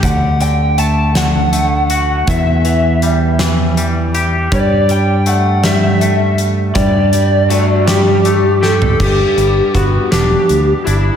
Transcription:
<<
  \new Staff \with { instrumentName = "Lead electric guitar" } { \time 6/8 \key g \major \tempo 4. = 54 fis''8 g''8 a''8 fis''4. | e''4 r2 | d''8 g''8 fis''8 e''4 r8 | d''4 fis'8 g'4 a'8 |
g'4 fis'8 g'4 e'8 | }
  \new Staff \with { instrumentName = "Clean electric guitar" } { \clef bass \time 6/8 \key g \major d8 d8 a8 d8 a8 fis'8 | e,8 e8 g8 e8 g8 g'8 | g8 g8 a8 g8 a4 | g8 g8 a8 g8 a8 g'8 |
g,8 g8 b8 d'4 d'8 | }
  \new Staff \with { instrumentName = "Fingered electric bass" } { \clef bass \time 6/8 \key g \major d,2. | e,2. | g,2. | g,2. |
g,,8 g,,8 g,,8 e,,8 d,8 g,,8 | }
  \new DrumStaff \with { instrumentName = "Drums" } \drummode { \time 6/8 <hh bd>8 hh8 hh8 <hh sn>8 hh8 hh8 | <hh bd>8 hh8 hh8 <hh sn>8 hh8 hh8 | <hh bd>8 hh8 hh8 <hh sn>8 hh8 hh8 | <hh bd>8 hh8 hh8 <hh sn>8 hh8 sn16 tomfh16 |
<cymc bd>8 hh8 <hh bd>8 <hh sn>8 hh8 hh8 | }
>>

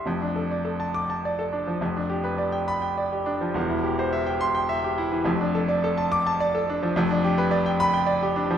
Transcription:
\new Staff \with { instrumentName = "Grand piano" } { \time 3/4 \key d \dorian \tempo 4 = 105 << { r4. d'''8 r4 | r4. b''8 r4 | r4. c'''8 r4 | r4. d'''8 r4 |
r4. b''8 r4 | } \\ { <f,, f,>16 d'16 a'16 d''16 a'16 a''8 a''16 d''16 a'16 d'16 f16 | <f,, f,>16 d'16 g'16 b'16 d''16 g''8 g''16 d''16 g'16 d'16 f16 | <e,, e,>16 e'16 g'16 c''16 e''16 g''8 g''16 e''16 g'16 e'16 e16 | <f,, f,>16 d'16 a'16 d''16 a'16 a''8 a''16 d''16 a'16 d'16 f16 |
<f,, f,>16 d'16 g'16 b'16 d''16 g''8 g''16 d''16 g'16 d'16 f16 | } >> }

